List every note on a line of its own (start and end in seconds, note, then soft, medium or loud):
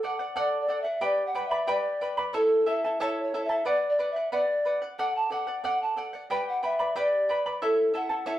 0.03 0.20 A4 medium
0.03 0.19 D5 soft
0.03 0.18 F#5 medium
0.03 0.40 F#5 medium
0.19 0.35 D5 soft
0.19 0.35 F#5 soft
0.36 0.67 A4 medium
0.36 0.68 D5 medium
0.36 0.59 D5 medium
0.36 0.69 F#5 medium
0.61 0.83 D5 medium
0.68 0.85 A4 medium
0.68 0.84 D5 soft
0.68 0.83 F#5 medium
0.82 1.06 E5 medium
0.82 1.01 F#5 soft
0.86 1.01 D5 soft
1.01 1.35 G4 medium
1.01 1.34 B4 medium
1.01 1.34 D5 medium
1.01 1.25 D5 medium
1.01 1.33 G5 medium
1.01 1.34 B5 medium
1.26 1.50 F#5 medium
1.35 1.51 B4 medium
1.35 1.50 D5 medium
1.35 1.52 G5 medium
1.35 1.50 B5 medium
1.48 1.67 D5 soft
1.48 1.72 E5 medium
1.48 1.67 B5 soft
1.52 1.66 B4 soft
1.67 2.01 G4 medium
1.67 2.01 B4 medium
1.67 2.01 D5 medium
1.67 2.12 D5 medium
1.67 2.00 G5 medium
1.67 2.01 B5 medium
2.01 2.17 B4 medium
2.01 2.17 D5 medium
2.01 2.18 G5 medium
2.01 2.16 B5 medium
2.17 2.34 B4 soft
2.17 2.34 D5 soft
2.17 2.34 B5 medium
2.33 2.65 E4 medium
2.33 2.66 A4 medium
2.33 2.71 A4 loud
2.33 2.67 C#5 medium
2.33 2.65 E5 medium
2.33 2.66 A5 medium
2.66 2.83 E4 medium
2.66 2.84 A4 medium
2.66 2.84 E5 medium
2.66 3.01 E5 medium
2.66 2.83 A5 medium
2.84 3.00 E4 soft
2.84 3.00 A4 soft
2.84 3.00 A5 soft
3.00 3.33 E4 medium
3.00 3.33 A4 medium
3.00 3.33 C#5 medium
3.00 3.22 C#5 medium
3.00 3.33 E5 medium
3.00 3.34 A5 medium
3.23 3.46 C#5 medium
3.34 3.49 E4 medium
3.34 3.49 A4 medium
3.34 3.50 E5 medium
3.34 3.48 A5 medium
3.45 3.68 E5 medium
3.49 3.65 E4 soft
3.49 3.67 A4 soft
3.49 3.66 A5 medium
3.65 3.98 B4 medium
3.65 3.98 D5 medium
3.65 3.88 D5 loud
3.65 3.99 F#5 medium
3.89 4.09 D5 medium
3.99 4.16 B4 medium
3.99 4.16 D5 medium
3.99 4.15 F#5 medium
4.11 4.31 E5 medium
4.16 4.31 D5 soft
4.16 4.32 F#5 soft
4.32 4.64 B4 medium
4.32 4.78 D5 medium
4.32 4.65 D5 medium
4.32 4.66 F#5 medium
4.65 4.82 B4 medium
4.65 4.82 D5 soft
4.65 4.81 F#5 medium
4.82 4.98 D5 soft
4.82 4.98 F#5 soft
4.99 5.29 A4 medium
4.99 5.30 D5 medium
4.99 5.17 F#5 loud
4.99 5.31 F#5 medium
5.16 5.34 A5 medium
5.30 5.47 A4 medium
5.30 5.47 D5 medium
5.30 5.46 F#5 medium
5.30 5.64 F#5 medium
5.47 5.63 D5 soft
5.47 5.64 F#5 soft
5.64 5.95 A4 medium
5.64 5.96 D5 medium
5.64 5.97 F#5 medium
5.64 5.80 F#5 medium
5.82 5.97 A5 medium
5.96 6.13 A4 soft
5.96 6.13 D5 medium
5.96 6.12 F#5 medium
6.13 6.30 D5 soft
6.13 6.30 F#5 medium
6.30 6.63 G4 medium
6.30 6.62 B4 medium
6.30 6.62 D5 medium
6.30 6.61 G5 medium
6.30 6.47 G5 loud
6.30 6.63 B5 medium
6.49 6.63 F#5 medium
6.63 6.79 B4 medium
6.63 6.79 D5 medium
6.63 6.94 E5 medium
6.63 6.79 G5 medium
6.63 6.78 B5 medium
6.79 6.95 B4 soft
6.79 6.95 D5 soft
6.79 6.95 B5 medium
6.96 7.28 G4 medium
6.96 7.28 B4 medium
6.96 7.29 D5 medium
6.96 7.43 D5 medium
6.96 7.28 G5 medium
6.96 7.29 B5 medium
7.29 7.45 B4 medium
7.29 7.45 D5 medium
7.29 7.45 G5 medium
7.29 7.45 B5 medium
7.46 7.62 B4 soft
7.46 7.62 D5 soft
7.46 7.62 B5 soft
7.62 7.93 E4 medium
7.62 7.94 A4 medium
7.62 7.93 A4 loud
7.62 7.94 C#5 medium
7.62 7.92 E5 medium
7.62 7.93 A5 medium
7.94 8.10 E4 medium
7.94 8.09 A4 medium
7.94 8.10 E5 medium
7.94 8.26 F#5 medium
7.94 8.08 A5 medium
8.09 8.26 E4 soft
8.09 8.26 A4 soft
8.09 8.26 A5 soft
8.26 8.39 E4 medium
8.26 8.39 A4 medium
8.26 8.39 C#5 medium
8.26 8.39 E5 medium
8.26 8.39 A5 medium